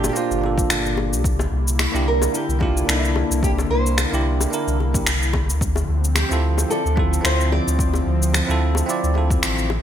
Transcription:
0.00 0.10 G1 medium
0.00 1.21 A#2 medium
0.00 0.11 A#3 medium
0.00 0.12 D4 medium
0.00 0.13 F4 medium
0.00 1.23 G4 medium
0.00 0.13 A4 loud
0.00 high bongo medium
0.04 shaker medium
0.09 0.37 A#3 medium
0.09 0.16 G4 medium
0.15 0.40 D4 medium
0.15 0.40 F4 medium
0.15 0.94 F4 medium
0.15 0.41 C5 medium
0.15 shaker medium
0.31 0.65 G1 loud
0.31 shaker soft
0.39 1.21 A#3 medium
0.39 1.22 D4 medium
0.44 1.24 F4 medium
0.44 1.25 A4 medium
0.44 high bongo medium
0.58 kick loud
0.58 shaker medium
0.70 1.14 G1 loud
0.70 finger snap loud
0.70 shaker medium
0.86 shaker soft
0.97 high bongo medium
1.12 1.46 C2 medium
1.12 shaker medium
1.24 5.57 D3 medium
1.24 5.57 A#3 medium
1.24 5.57 E4 medium
1.24 kick loud
1.24 shaker medium
1.39 high bongo medium
1.39 shaker soft
1.52 1.87 C2 loud
1.68 shaker medium
1.79 finger snap medium
1.79 high bongo medium
1.79 shaker medium
1.92 2.28 C2 medium
1.92 2.30 A#3 medium
1.92 2.30 D4 medium
1.92 2.31 E4 medium
1.92 2.32 G4 loud
1.92 shaker soft
2.08 2.33 A#4 medium
2.22 high bongo medium
2.22 shaker medium
2.32 2.43 A#3 medium
2.32 2.44 D4 medium
2.32 2.45 E4 medium
2.32 2.63 G4 medium
2.32 2.45 A#4 medium
2.32 shaker medium
2.49 2.83 C2 loud
2.49 shaker soft
2.59 2.83 A#3 medium
2.59 2.85 D4 medium
2.59 2.86 E4 medium
2.59 2.89 F4 medium
2.59 2.86 G4 loud
2.59 kick medium
2.59 high bongo medium
2.77 shaker medium
2.84 3.24 C2 medium
2.84 4.07 A#3 medium
2.84 4.08 D4 medium
2.89 4.10 E4 medium
2.89 3.45 E4 medium
2.89 4.11 A4 medium
2.89 finger snap loud
2.89 shaker medium
3.05 shaker soft
3.16 high bongo medium
3.31 3.64 C2 medium
3.31 shaker medium
3.43 3.51 G4 medium
3.43 kick loud
3.43 shaker medium
3.58 high bongo medium
3.58 shaker soft
3.70 4.06 C2 loud
3.70 4.27 C5 medium
3.86 shaker medium
3.98 finger snap medium
3.98 high bongo medium
3.98 shaker medium
4.11 4.46 C2 medium
4.11 4.48 A#3 medium
4.11 4.49 D4 medium
4.11 4.49 E4 medium
4.11 4.50 G4 loud
4.11 shaker soft
4.27 4.48 A#4 medium
4.40 high bongo medium
4.40 shaker medium
4.50 4.76 A#3 medium
4.50 4.76 D4 medium
4.50 4.77 E4 medium
4.50 4.77 A#4 medium
4.50 shaker soft
4.67 5.01 C2 medium
4.67 shaker soft
4.80 high bongo medium
4.93 5.08 A#3 medium
4.93 5.08 D4 medium
4.93 5.09 E4 medium
4.93 5.09 G4 medium
4.93 kick loud
4.93 shaker medium
5.06 5.50 C2 medium
5.06 finger snap loud
5.06 shaker medium
5.23 shaker soft
5.33 kick medium
5.33 high bongo medium
5.49 5.83 D2 medium
5.49 shaker medium
5.60 9.66 D3 medium
5.60 9.66 F3 medium
5.60 9.66 C4 medium
5.60 kick loud
5.60 shaker medium
5.76 high bongo medium
5.76 shaker soft
5.89 6.24 D2 loud
6.04 shaker medium
6.15 6.73 G4 medium
6.15 finger snap medium
6.15 high bongo medium
6.15 shaker medium
6.29 6.65 D2 medium
6.29 6.67 C4 medium
6.29 6.67 E4 medium
6.29 6.68 F4 medium
6.29 6.68 A4 medium
6.29 shaker soft
6.58 high bongo medium
6.58 shaker medium
6.68 6.80 C4 medium
6.68 6.81 E4 medium
6.68 6.81 F4 medium
6.68 7.24 A4 medium
6.68 6.82 D5 medium
6.68 shaker medium
6.85 7.19 D2 medium
6.85 shaker soft
6.96 7.20 C4 medium
6.96 7.22 E4 medium
6.96 7.22 F4 medium
6.96 7.23 A4 loud
6.96 kick medium
6.96 high bongo medium
7.13 shaker medium
7.21 7.60 D2 medium
7.21 8.43 C4 medium
7.21 8.45 E4 medium
7.21 7.52 C5 medium
7.21 finger snap medium
7.25 8.46 F4 medium
7.25 8.47 C5 medium
7.25 shaker medium
7.41 shaker soft
7.52 8.03 D5 loud
7.52 high bongo medium
7.67 8.01 D2 medium
7.67 shaker medium
7.79 kick loud
7.79 shaker medium
7.94 high bongo medium
7.94 shaker soft
8.07 8.42 D2 medium
8.23 shaker medium
8.33 finger snap medium
8.33 high bongo medium
8.33 shaker soft
8.47 8.83 D2 medium
8.47 8.85 C4 medium
8.47 8.85 E4 medium
8.47 8.86 F4 medium
8.47 8.86 A4 loud
8.47 shaker soft
8.75 high bongo medium
8.75 shaker medium
8.86 9.12 C4 medium
8.86 9.12 E4 medium
8.86 9.13 F4 medium
8.86 shaker medium
8.90 9.14 D5 loud
9.03 9.37 D2 medium
9.03 shaker soft
9.14 9.68 C4 medium
9.14 9.69 E4 medium
9.14 9.69 F4 medium
9.14 9.70 A4 medium
9.14 high bongo medium
9.30 kick loud
9.30 shaker medium
9.43 9.78 A1 medium
9.43 finger snap medium
9.43 shaker medium
9.59 shaker soft
9.69 9.82 C3 medium
9.69 9.82 A3 medium
9.69 9.82 G4 medium
9.69 high bongo medium

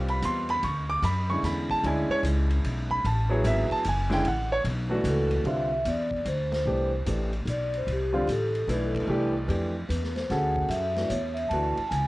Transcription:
0.00 0.21 C2 medium
0.00 0.54 G3 medium
0.00 0.54 C4 medium
0.00 0.55 F4 medium
0.00 0.55 B4 medium
0.08 0.23 B5 medium
0.08 ride soft
0.22 0.61 E2 medium
0.22 0.49 C6 medium
0.22 hi-hat pedal medium
0.22 ride medium
0.49 0.63 B5 loud
0.49 ride soft
0.63 1.02 D2 medium
0.63 0.89 C#6 medium
0.63 ride medium
0.90 1.03 D6 loud
1.02 1.42 F#2 loud
1.02 1.29 B5 medium
1.02 hi-hat pedal medium
1.02 ride medium
1.30 1.81 D3 medium
1.30 1.82 G#3 soft
1.30 1.82 C#4 soft
1.30 1.82 E4 medium
1.30 1.43 C#6 loud
1.43 1.82 E2 medium
1.43 1.69 B5 medium
1.43 snare soft
1.43 hi-hat pedal medium
1.43 ride medium
1.70 1.84 A5 loud
1.70 kick medium
1.70 ride medium
1.83 2.08 D2 loud
1.83 2.96 G#3 medium
1.83 2.97 C#4 medium
1.83 2.96 D4 medium
1.83 2.97 E4 medium
1.83 2.10 G#5 medium
1.83 ride medium
2.09 2.19 C#5 loud
2.09 muted upright bass stroke soft
2.23 2.62 C#2 loud
2.23 hi-hat pedal medium
2.23 ride medium
2.50 ride medium
2.64 3.03 B1 medium
2.64 ride medium
2.90 3.04 B5 loud
2.90 kick soft
3.04 3.43 A1 loud
3.04 3.31 A5 medium
3.04 ride medium
3.30 3.81 F#3 medium
3.30 3.81 B3 medium
3.30 3.82 E4 medium
3.30 3.82 G#4 medium
3.30 3.44 C#5 medium
3.44 3.69 G#1 loud
3.44 3.71 E5 loud
3.44 hi-hat pedal medium
3.44 ride medium
3.70 3.85 A5 loud
3.70 muted upright bass stroke soft
3.70 kick medium
3.70 ride medium
3.84 4.24 F#1 medium
3.84 hi-hat pedal medium
3.84 ride medium
3.89 4.12 G#5 medium
4.10 4.23 D3 medium
4.10 4.23 G#3 medium
4.10 4.23 C#4 medium
4.10 4.23 E4 medium
4.10 4.26 G5 loud
4.10 snare medium
4.10 ride soft
4.25 4.64 A1 medium
4.25 4.52 F#5 medium
4.25 ride medium
4.52 4.60 C#5 loud
4.64 5.03 B1 medium
4.64 ride medium
4.90 5.42 E3 medium
4.90 5.42 A3 medium
4.90 5.42 D4 medium
4.90 5.43 F#4 medium
5.04 5.43 C#2 medium
5.04 hi-hat pedal medium
5.04 ride medium
5.09 5.34 A4 medium
5.31 5.46 B4 medium
5.31 ride soft
5.44 5.84 C2 medium
5.44 5.69 D3 medium
5.44 5.69 G3 medium
5.44 5.70 C4 soft
5.44 5.70 F4 medium
5.44 5.84 E5 medium
5.44 ride soft
5.85 6.25 E2 medium
5.85 6.24 D5 medium
5.85 hi-hat pedal medium
5.85 ride medium
6.11 kick medium
6.25 6.65 D2 medium
6.25 6.51 C5 medium
6.25 hi-hat pedal medium
6.25 ride medium
6.52 6.90 C5 medium
6.52 snare medium
6.52 ride medium
6.66 7.05 C2 medium
6.66 6.90 E3 medium
6.66 6.90 A3 medium
6.66 6.90 D4 medium
6.66 6.90 G4 medium
7.06 7.45 A1 medium
7.06 7.30 E3 soft
7.06 7.30 A3 soft
7.06 7.30 D4 soft
7.06 7.31 G4 medium
7.06 hi-hat pedal medium
7.06 ride medium
7.33 ride soft
7.45 7.85 B1 medium
7.45 hi-hat pedal medium
7.45 ride medium
7.50 7.75 D5 medium
7.73 7.90 C5 medium
7.73 ride soft
7.87 8.26 C2 medium
7.87 ride medium
7.92 8.23 G4 medium
8.13 8.26 D3 medium
8.13 8.26 G3 medium
8.13 8.26 C4 medium
8.13 8.27 F4 medium
8.24 8.67 A1 medium
8.24 8.28 G4 medium
8.29 8.67 A4 medium
8.29 hi-hat pedal medium
8.29 ride medium
8.55 ride soft
8.67 9.07 B1 medium
8.67 9.06 E3 medium
8.67 9.08 A3 medium
8.67 9.07 D4 medium
8.67 9.30 E4 medium
8.67 8.87 B4 medium
8.67 hi-hat pedal medium
8.67 ride medium
8.85 8.94 A4 medium
8.95 9.33 B4 medium
8.95 kick medium
8.95 ride medium
9.07 9.47 C2 medium
9.07 9.32 E3 medium
9.07 9.32 A3 medium
9.07 9.32 D4 medium
9.07 9.32 G4 medium
9.48 9.88 F2 medium
9.48 9.72 E3 medium
9.48 9.73 A3 soft
9.48 9.73 D4 soft
9.48 9.73 G4 medium
9.48 ride medium
9.89 10.28 E2 medium
9.89 10.13 B4 medium
9.89 hi-hat pedal medium
9.89 ride medium
10.03 snare soft
10.16 10.30 C5 medium
10.16 snare soft
10.16 ride soft
10.30 10.68 D2 medium
10.30 10.91 C#4 medium
10.30 10.92 F#4 medium
10.30 10.91 G#4 medium
10.30 10.92 A4 medium
10.30 10.67 F#5 medium
10.30 snare soft
10.30 ride medium
10.56 kick medium
10.68 11.08 F#2 medium
10.68 11.11 E5 medium
10.68 hi-hat pedal medium
10.68 ride medium
10.96 11.09 E3 medium
10.96 11.09 A3 soft
10.96 11.10 D4 soft
10.96 11.10 F#4 medium
10.96 snare soft
10.96 ride soft
11.09 11.49 E2 medium
11.09 11.34 C#5 medium
11.09 hi-hat pedal medium
11.09 ride medium
11.34 11.48 E5 medium
11.34 ride soft
11.49 11.75 D2 medium
11.49 11.91 A5 loud
11.49 ride medium
11.53 11.75 E3 medium
11.53 11.75 A3 medium
11.53 11.76 D4 medium
11.53 11.76 F#4 medium
11.77 muted upright bass stroke soft
11.77 ride soft
11.88 12.07 C#2 medium
11.88 12.07 G#5 loud
11.88 hi-hat pedal medium
11.88 ride medium

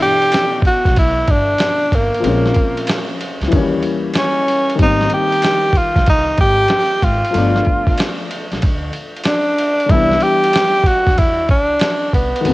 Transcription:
0.00 2.20 B2 soft
0.00 2.18 E3 medium
0.00 2.25 D4 medium
0.00 0.61 G4 loud
0.00 2.19 A4 medium
0.22 ride soft
0.32 snare medium
0.32 hi-hat pedal medium
0.32 ride medium
0.62 kick medium
0.62 ride medium
0.67 0.95 F#4 medium
0.85 1.19 B1 medium
0.85 kick medium
0.85 snare soft
0.85 ride soft
0.96 1.32 E4 medium
0.96 kick medium
0.96 ride medium
1.27 1.53 G1 medium
1.27 1.96 D4 loud
1.27 kick medium
1.27 ride medium
1.58 snare loud
1.58 hi-hat pedal soft
1.58 ride medium
1.92 2.09 G1 medium
1.92 3.21 A#3 medium
1.92 kick medium
1.92 ride medium
2.14 ride soft
2.20 3.47 F3 medium
2.20 3.48 G#3 medium
2.24 2.49 A#1 medium
2.24 3.49 C4 medium
2.24 3.50 C#4 medium
2.24 ride medium
2.46 snare soft
2.54 kick medium
2.54 ride medium
2.77 ride soft
2.87 snare loud
2.87 hi-hat pedal soft
2.87 ride medium
3.21 ride medium
3.41 3.49 C#2 medium
3.41 snare soft
3.41 ride soft
3.48 4.75 E3 medium
3.48 3.59 F#3 medium
3.52 3.77 D#2 loud
3.52 4.77 A#3 medium
3.52 4.78 C#4 medium
3.52 kick medium
3.52 ride medium
3.57 4.77 G3 medium
3.83 ride soft
4.14 snare loud
4.14 hi-hat pedal soft
4.14 ride medium
4.18 4.76 C#4 medium
4.48 ride medium
4.70 ride soft
4.75 5.04 G#1 medium
4.75 7.29 D#3 medium
4.75 7.30 G3 medium
4.75 kick loud
4.75 ride medium
4.80 7.31 A#3 medium
4.80 7.32 C4 medium
4.80 5.10 D#4 loud
5.01 snare soft
5.10 5.79 G4 loud
5.10 ride soft
5.32 ride soft
5.42 snare medium
5.42 hi-hat pedal soft
5.42 ride medium
5.73 kick medium
5.73 ride medium
5.77 6.08 F4 medium
5.96 6.30 C2 medium
5.96 kick medium
5.96 snare soft
5.96 ride soft
6.06 6.38 D#4 medium
6.06 kick loud
6.06 ride medium
6.38 6.64 G#1 medium
6.38 7.06 G4 loud
6.38 kick medium
6.38 ride soft
6.68 snare medium
6.68 hi-hat pedal soft
6.68 ride medium
7.02 7.19 G#1 medium
7.02 8.31 F4 medium
7.02 kick medium
7.02 ride medium
7.25 ride soft
7.30 9.84 F3 medium
7.30 9.85 A3 medium
7.30 ride medium
7.35 7.60 G1 loud
7.35 9.86 B3 soft
7.35 9.87 D4 medium
7.56 snare soft
7.65 kick medium
7.65 ride soft
7.87 kick medium
7.87 ride soft
7.98 snare loud
7.98 hi-hat pedal soft
7.98 ride medium
8.31 ride medium
8.52 8.60 B1 medium
8.52 snare soft
8.52 ride soft
8.62 8.88 D2 medium
8.62 kick medium
8.62 ride medium
8.93 ride soft
9.16 ride soft
9.24 9.92 D4 medium
9.24 snare loud
9.24 hi-hat pedal soft
9.24 ride medium
9.58 ride medium
9.80 ride soft
9.86 10.15 C2 medium
9.86 9.96 D3 medium
9.86 12.40 G3 medium
9.86 kick loud
9.86 ride medium
9.91 12.42 E3 medium
9.91 12.42 B3 medium
9.91 12.43 D4 medium
9.91 10.24 E4 loud
10.11 snare soft
10.20 10.88 G4 loud
10.20 ride medium
10.43 ride soft
10.53 snare loud
10.53 hi-hat pedal soft
10.53 ride medium
10.83 11.20 F#4 loud
10.83 kick medium
10.83 ride medium
11.07 11.49 E2 medium
11.07 kick medium
11.07 snare soft
11.07 ride soft
11.18 11.50 E4 medium
11.18 kick medium
11.18 ride medium
11.49 11.74 C2 medium
11.49 12.10 D4 loud
11.49 kick medium
11.49 ride medium
11.80 snare loud
11.80 hi-hat pedal soft
11.80 ride medium
12.13 12.30 C2 medium
12.13 12.54 B3 medium
12.13 kick medium
12.13 ride medium
12.36 ride soft
12.41 12.54 D#3 medium
12.41 12.54 F#3 medium
12.45 12.54 D2 loud
12.45 12.54 C3 medium
12.45 12.54 A3 medium
12.45 ride medium

